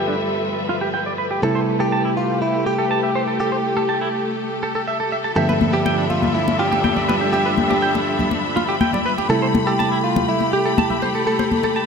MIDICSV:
0, 0, Header, 1, 6, 480
1, 0, Start_track
1, 0, Key_signature, 0, "minor"
1, 0, Tempo, 491803
1, 1398, Time_signature, 4, 2, 24, 8
1, 11575, End_track
2, 0, Start_track
2, 0, Title_t, "Clean electric guitar"
2, 0, Program_c, 0, 27
2, 77, Note_on_c, 0, 62, 65
2, 137, Note_off_c, 0, 62, 0
2, 676, Note_on_c, 0, 65, 65
2, 737, Note_off_c, 0, 65, 0
2, 794, Note_on_c, 0, 67, 89
2, 856, Note_off_c, 0, 67, 0
2, 915, Note_on_c, 0, 79, 88
2, 1006, Note_off_c, 0, 79, 0
2, 1037, Note_on_c, 0, 74, 70
2, 1097, Note_off_c, 0, 74, 0
2, 1154, Note_on_c, 0, 71, 85
2, 1216, Note_off_c, 0, 71, 0
2, 1275, Note_on_c, 0, 67, 68
2, 1366, Note_off_c, 0, 67, 0
2, 1396, Note_on_c, 0, 69, 74
2, 1487, Note_off_c, 0, 69, 0
2, 1514, Note_on_c, 0, 72, 90
2, 1552, Note_off_c, 0, 72, 0
2, 1756, Note_on_c, 0, 69, 89
2, 1817, Note_off_c, 0, 69, 0
2, 1877, Note_on_c, 0, 81, 89
2, 1968, Note_off_c, 0, 81, 0
2, 1999, Note_on_c, 0, 64, 65
2, 2058, Note_off_c, 0, 64, 0
2, 2599, Note_on_c, 0, 67, 65
2, 2659, Note_off_c, 0, 67, 0
2, 2718, Note_on_c, 0, 69, 90
2, 2778, Note_off_c, 0, 69, 0
2, 2838, Note_on_c, 0, 81, 91
2, 2928, Note_off_c, 0, 81, 0
2, 2960, Note_on_c, 0, 76, 69
2, 3019, Note_off_c, 0, 76, 0
2, 3079, Note_on_c, 0, 72, 88
2, 3138, Note_off_c, 0, 72, 0
2, 3197, Note_on_c, 0, 69, 67
2, 3287, Note_off_c, 0, 69, 0
2, 3316, Note_on_c, 0, 69, 72
2, 3407, Note_off_c, 0, 69, 0
2, 3436, Note_on_c, 0, 72, 87
2, 3473, Note_off_c, 0, 72, 0
2, 3676, Note_on_c, 0, 69, 88
2, 3737, Note_off_c, 0, 69, 0
2, 3795, Note_on_c, 0, 81, 87
2, 3887, Note_off_c, 0, 81, 0
2, 3918, Note_on_c, 0, 64, 66
2, 3977, Note_off_c, 0, 64, 0
2, 4518, Note_on_c, 0, 69, 65
2, 4608, Note_off_c, 0, 69, 0
2, 4638, Note_on_c, 0, 69, 88
2, 4698, Note_off_c, 0, 69, 0
2, 4758, Note_on_c, 0, 76, 89
2, 4848, Note_off_c, 0, 76, 0
2, 4879, Note_on_c, 0, 69, 69
2, 4968, Note_off_c, 0, 69, 0
2, 4999, Note_on_c, 0, 76, 85
2, 5034, Note_off_c, 0, 76, 0
2, 5118, Note_on_c, 0, 81, 65
2, 5178, Note_off_c, 0, 81, 0
2, 5236, Note_on_c, 0, 67, 72
2, 5327, Note_off_c, 0, 67, 0
2, 5357, Note_on_c, 0, 71, 85
2, 5393, Note_off_c, 0, 71, 0
2, 5597, Note_on_c, 0, 67, 89
2, 5657, Note_off_c, 0, 67, 0
2, 5717, Note_on_c, 0, 79, 88
2, 5808, Note_off_c, 0, 79, 0
2, 5837, Note_on_c, 0, 62, 66
2, 5897, Note_off_c, 0, 62, 0
2, 6436, Note_on_c, 0, 65, 66
2, 6497, Note_off_c, 0, 65, 0
2, 6556, Note_on_c, 0, 67, 88
2, 6616, Note_off_c, 0, 67, 0
2, 6676, Note_on_c, 0, 79, 89
2, 6767, Note_off_c, 0, 79, 0
2, 6798, Note_on_c, 0, 74, 67
2, 6857, Note_off_c, 0, 74, 0
2, 6915, Note_on_c, 0, 71, 85
2, 6977, Note_off_c, 0, 71, 0
2, 7038, Note_on_c, 0, 67, 69
2, 7127, Note_off_c, 0, 67, 0
2, 7157, Note_on_c, 0, 67, 74
2, 7248, Note_off_c, 0, 67, 0
2, 7277, Note_on_c, 0, 71, 87
2, 7313, Note_off_c, 0, 71, 0
2, 7517, Note_on_c, 0, 67, 89
2, 7577, Note_off_c, 0, 67, 0
2, 7636, Note_on_c, 0, 79, 93
2, 7727, Note_off_c, 0, 79, 0
2, 7758, Note_on_c, 0, 62, 65
2, 7818, Note_off_c, 0, 62, 0
2, 8355, Note_on_c, 0, 65, 68
2, 8417, Note_off_c, 0, 65, 0
2, 8477, Note_on_c, 0, 67, 91
2, 8537, Note_off_c, 0, 67, 0
2, 8597, Note_on_c, 0, 79, 88
2, 8687, Note_off_c, 0, 79, 0
2, 8719, Note_on_c, 0, 74, 69
2, 8778, Note_off_c, 0, 74, 0
2, 8839, Note_on_c, 0, 71, 89
2, 8898, Note_off_c, 0, 71, 0
2, 8960, Note_on_c, 0, 67, 68
2, 9048, Note_off_c, 0, 67, 0
2, 9077, Note_on_c, 0, 69, 75
2, 9168, Note_off_c, 0, 69, 0
2, 9195, Note_on_c, 0, 72, 91
2, 9232, Note_off_c, 0, 72, 0
2, 9437, Note_on_c, 0, 69, 93
2, 9497, Note_off_c, 0, 69, 0
2, 9557, Note_on_c, 0, 81, 93
2, 9647, Note_off_c, 0, 81, 0
2, 9679, Note_on_c, 0, 64, 66
2, 9738, Note_off_c, 0, 64, 0
2, 10279, Note_on_c, 0, 67, 68
2, 10339, Note_off_c, 0, 67, 0
2, 10399, Note_on_c, 0, 69, 91
2, 10458, Note_off_c, 0, 69, 0
2, 10523, Note_on_c, 0, 81, 90
2, 10610, Note_off_c, 0, 81, 0
2, 10640, Note_on_c, 0, 76, 72
2, 10699, Note_off_c, 0, 76, 0
2, 10759, Note_on_c, 0, 72, 87
2, 10818, Note_off_c, 0, 72, 0
2, 10881, Note_on_c, 0, 69, 70
2, 10969, Note_off_c, 0, 69, 0
2, 11001, Note_on_c, 0, 69, 77
2, 11090, Note_off_c, 0, 69, 0
2, 11120, Note_on_c, 0, 72, 90
2, 11155, Note_off_c, 0, 72, 0
2, 11361, Note_on_c, 0, 69, 93
2, 11419, Note_off_c, 0, 69, 0
2, 11478, Note_on_c, 0, 81, 92
2, 11568, Note_off_c, 0, 81, 0
2, 11575, End_track
3, 0, Start_track
3, 0, Title_t, "Clean electric guitar"
3, 0, Program_c, 1, 27
3, 0, Note_on_c, 1, 67, 77
3, 398, Note_off_c, 1, 67, 0
3, 1398, Note_on_c, 1, 69, 95
3, 1755, Note_off_c, 1, 69, 0
3, 1759, Note_on_c, 1, 67, 88
3, 2115, Note_off_c, 1, 67, 0
3, 2118, Note_on_c, 1, 65, 80
3, 2341, Note_off_c, 1, 65, 0
3, 2360, Note_on_c, 1, 64, 83
3, 2597, Note_off_c, 1, 64, 0
3, 2601, Note_on_c, 1, 67, 88
3, 3309, Note_off_c, 1, 67, 0
3, 3321, Note_on_c, 1, 67, 75
3, 4240, Note_off_c, 1, 67, 0
3, 5234, Note_on_c, 1, 69, 94
3, 5590, Note_off_c, 1, 69, 0
3, 5594, Note_on_c, 1, 67, 91
3, 5930, Note_off_c, 1, 67, 0
3, 5953, Note_on_c, 1, 65, 82
3, 6178, Note_off_c, 1, 65, 0
3, 6191, Note_on_c, 1, 64, 83
3, 6429, Note_off_c, 1, 64, 0
3, 6433, Note_on_c, 1, 67, 85
3, 7140, Note_off_c, 1, 67, 0
3, 7152, Note_on_c, 1, 67, 78
3, 8075, Note_off_c, 1, 67, 0
3, 9075, Note_on_c, 1, 69, 97
3, 9411, Note_off_c, 1, 69, 0
3, 9437, Note_on_c, 1, 67, 94
3, 9794, Note_off_c, 1, 67, 0
3, 9797, Note_on_c, 1, 65, 85
3, 10021, Note_off_c, 1, 65, 0
3, 10039, Note_on_c, 1, 64, 84
3, 10275, Note_off_c, 1, 64, 0
3, 10279, Note_on_c, 1, 67, 92
3, 10994, Note_off_c, 1, 67, 0
3, 10998, Note_on_c, 1, 69, 83
3, 11575, Note_off_c, 1, 69, 0
3, 11575, End_track
4, 0, Start_track
4, 0, Title_t, "String section"
4, 0, Program_c, 2, 48
4, 0, Note_on_c, 2, 53, 62
4, 0, Note_on_c, 2, 55, 70
4, 0, Note_on_c, 2, 69, 60
4, 0, Note_on_c, 2, 71, 62
4, 0, Note_on_c, 2, 76, 75
4, 1359, Note_off_c, 2, 53, 0
4, 1359, Note_off_c, 2, 69, 0
4, 1359, Note_off_c, 2, 76, 0
4, 1360, Note_off_c, 2, 55, 0
4, 1400, Note_on_c, 2, 57, 69
4, 1400, Note_on_c, 2, 67, 65
4, 3278, Note_off_c, 2, 71, 0
4, 3316, Note_on_c, 2, 69, 62
4, 5200, Note_off_c, 2, 57, 0
4, 5200, Note_off_c, 2, 67, 0
4, 5236, Note_on_c, 2, 55, 68
4, 5236, Note_on_c, 2, 83, 75
4, 5237, Note_on_c, 2, 53, 65
4, 5237, Note_on_c, 2, 62, 66
4, 5237, Note_on_c, 2, 76, 65
4, 9038, Note_off_c, 2, 55, 0
4, 9038, Note_off_c, 2, 69, 0
4, 9039, Note_off_c, 2, 53, 0
4, 9039, Note_off_c, 2, 62, 0
4, 9039, Note_off_c, 2, 76, 0
4, 9078, Note_on_c, 2, 67, 67
4, 9079, Note_on_c, 2, 57, 72
4, 11575, Note_off_c, 2, 57, 0
4, 11575, Note_off_c, 2, 67, 0
4, 11575, Note_off_c, 2, 83, 0
4, 11575, End_track
5, 0, Start_track
5, 0, Title_t, "Reed electric piano"
5, 0, Program_c, 3, 4
5, 0, Note_on_c, 3, 43, 65
5, 0, Note_on_c, 3, 50, 60
5, 0, Note_on_c, 3, 53, 61
5, 0, Note_on_c, 3, 57, 61
5, 0, Note_on_c, 3, 59, 60
5, 0, Note_on_c, 3, 76, 75
5, 1365, Note_off_c, 3, 43, 0
5, 1366, Note_off_c, 3, 50, 0
5, 1368, Note_off_c, 3, 53, 0
5, 1370, Note_off_c, 3, 57, 0
5, 1372, Note_off_c, 3, 59, 0
5, 1374, Note_off_c, 3, 76, 0
5, 1388, Note_on_c, 3, 48, 70
5, 1392, Note_on_c, 3, 55, 64
5, 1396, Note_on_c, 3, 57, 63
5, 1408, Note_on_c, 3, 64, 78
5, 5204, Note_off_c, 3, 48, 0
5, 5206, Note_off_c, 3, 55, 0
5, 5208, Note_off_c, 3, 57, 0
5, 5214, Note_off_c, 3, 64, 0
5, 5227, Note_on_c, 3, 43, 68
5, 5232, Note_on_c, 3, 50, 62
5, 5236, Note_on_c, 3, 53, 64
5, 5239, Note_on_c, 3, 57, 65
5, 5243, Note_on_c, 3, 59, 61
5, 5247, Note_on_c, 3, 76, 76
5, 9044, Note_off_c, 3, 43, 0
5, 9046, Note_off_c, 3, 50, 0
5, 9048, Note_off_c, 3, 53, 0
5, 9050, Note_off_c, 3, 57, 0
5, 9052, Note_off_c, 3, 59, 0
5, 9053, Note_off_c, 3, 76, 0
5, 9065, Note_on_c, 3, 48, 69
5, 9070, Note_on_c, 3, 55, 67
5, 9075, Note_on_c, 3, 57, 64
5, 9084, Note_on_c, 3, 64, 77
5, 11575, Note_off_c, 3, 48, 0
5, 11575, Note_off_c, 3, 55, 0
5, 11575, Note_off_c, 3, 57, 0
5, 11575, Note_off_c, 3, 64, 0
5, 11575, End_track
6, 0, Start_track
6, 0, Title_t, "Drums"
6, 5358, Note_on_c, 9, 62, 44
6, 5456, Note_off_c, 9, 62, 0
6, 5477, Note_on_c, 9, 63, 83
6, 5574, Note_off_c, 9, 63, 0
6, 5718, Note_on_c, 9, 62, 66
6, 5815, Note_off_c, 9, 62, 0
6, 5955, Note_on_c, 9, 62, 41
6, 6053, Note_off_c, 9, 62, 0
6, 6074, Note_on_c, 9, 63, 64
6, 6083, Note_on_c, 9, 64, 67
6, 6171, Note_off_c, 9, 63, 0
6, 6181, Note_off_c, 9, 64, 0
6, 6322, Note_on_c, 9, 62, 65
6, 6419, Note_off_c, 9, 62, 0
6, 6562, Note_on_c, 9, 62, 43
6, 6660, Note_off_c, 9, 62, 0
6, 6678, Note_on_c, 9, 63, 87
6, 6776, Note_off_c, 9, 63, 0
6, 6799, Note_on_c, 9, 64, 63
6, 6896, Note_off_c, 9, 64, 0
6, 6924, Note_on_c, 9, 62, 67
6, 7022, Note_off_c, 9, 62, 0
6, 7162, Note_on_c, 9, 62, 41
6, 7259, Note_off_c, 9, 62, 0
6, 7394, Note_on_c, 9, 63, 74
6, 7491, Note_off_c, 9, 63, 0
6, 7522, Note_on_c, 9, 62, 68
6, 7619, Note_off_c, 9, 62, 0
6, 7760, Note_on_c, 9, 62, 49
6, 7857, Note_off_c, 9, 62, 0
6, 7994, Note_on_c, 9, 63, 52
6, 8007, Note_on_c, 9, 64, 70
6, 8092, Note_off_c, 9, 63, 0
6, 8105, Note_off_c, 9, 64, 0
6, 8114, Note_on_c, 9, 62, 67
6, 8211, Note_off_c, 9, 62, 0
6, 8362, Note_on_c, 9, 62, 47
6, 8459, Note_off_c, 9, 62, 0
6, 8596, Note_on_c, 9, 63, 88
6, 8693, Note_off_c, 9, 63, 0
6, 8716, Note_on_c, 9, 64, 68
6, 8726, Note_on_c, 9, 62, 66
6, 8813, Note_off_c, 9, 64, 0
6, 8823, Note_off_c, 9, 62, 0
6, 8963, Note_on_c, 9, 62, 47
6, 9061, Note_off_c, 9, 62, 0
6, 9317, Note_on_c, 9, 63, 80
6, 9320, Note_on_c, 9, 62, 68
6, 9414, Note_off_c, 9, 63, 0
6, 9418, Note_off_c, 9, 62, 0
6, 9564, Note_on_c, 9, 62, 50
6, 9661, Note_off_c, 9, 62, 0
6, 9917, Note_on_c, 9, 63, 52
6, 9919, Note_on_c, 9, 62, 75
6, 9923, Note_on_c, 9, 64, 71
6, 10015, Note_off_c, 9, 63, 0
6, 10016, Note_off_c, 9, 62, 0
6, 10020, Note_off_c, 9, 64, 0
6, 10155, Note_on_c, 9, 62, 43
6, 10252, Note_off_c, 9, 62, 0
6, 10520, Note_on_c, 9, 63, 77
6, 10521, Note_on_c, 9, 62, 68
6, 10617, Note_off_c, 9, 63, 0
6, 10618, Note_off_c, 9, 62, 0
6, 10641, Note_on_c, 9, 64, 72
6, 10739, Note_off_c, 9, 64, 0
6, 10757, Note_on_c, 9, 62, 47
6, 10855, Note_off_c, 9, 62, 0
6, 11119, Note_on_c, 9, 62, 66
6, 11217, Note_off_c, 9, 62, 0
6, 11239, Note_on_c, 9, 63, 79
6, 11337, Note_off_c, 9, 63, 0
6, 11355, Note_on_c, 9, 62, 52
6, 11453, Note_off_c, 9, 62, 0
6, 11575, End_track
0, 0, End_of_file